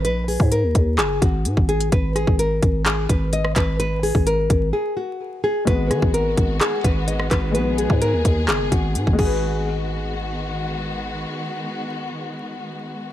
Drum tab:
CC |----------------|----------------|----------------|----------------|
HH |x-o-x-x-x-x-x-xx|x-x-x-x-x-x-x-x-|x-o-x-x---------|x-x-x-x-x-x-x-x-|
CP |--------x-------|--------x-----x-|----------------|--------x-----x-|
SD |----------------|--r----------r--|----------------|--r----------r--|
BD |---o--o---o--o--|o--o--o---o---o-|---o--o---------|o--o--o---o---o-|

CC |--------------x-|----------------|----------------|
HH |x-x-x-x-x-x-x---|----------------|----------------|
CP |--------x-------|----------------|----------------|
SD |----------------|----------------|----------------|
BD |---o--o---o--oo-|----------------|----------------|